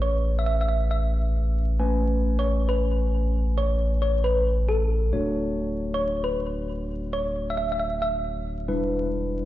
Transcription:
Already playing: A1 A3 C#4 G#4 B4
0.02 C#5
0.39 E5
0.46 E5
0.61 E5
0.69 E5
0.91 E5
1.80 A3 C#4 B4 G#5
2.39 C#5
2.69 B4
3.58 C#5
4.02 C#5
4.24 B4
4.69 A4
5.13 D1 A3 D4 F#4 C#5
5.94 C#5
6.24 B4
7.13 C#5
7.50 E5
7.57 E5
7.72 E5
7.80 E5
8.02 E5
8.68 E1 G3 D4 E4 B4

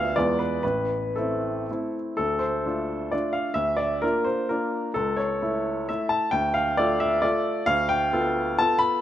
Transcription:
Already playing: D2 B3 D4 F4 E5 F5
0.16 E2 G#3 B3 F4 D5
0.39 B4
0.63 A1 B4
1.16 A3 C4 E4 A4
1.71 A3 C4 E4
2.17 D2 A4
2.39 C5
2.66 A3 D4 F4
3.12 A3 D4 F4 D5
3.33 F5
3.54 D2 E5
3.77 D5
4.02 A#3 D4 F4 A#4
4.25 C5
4.49 A#3 D4 F4 A#4
4.94 C#2 A4
5.16 C#5
5.42 A3 E4 A4
5.89 A3 E4 A4 E5
6.09 A5
6.31 D2 G5
6.54 F5
6.77 A3 F4 A4 D5
7.00 E5
7.22 A3 F4 A4 D5
7.66 D2 F5
7.89 G5
8.13 B3 F4 A4
8.59 B3 F4 A4 A5
8.79 B5

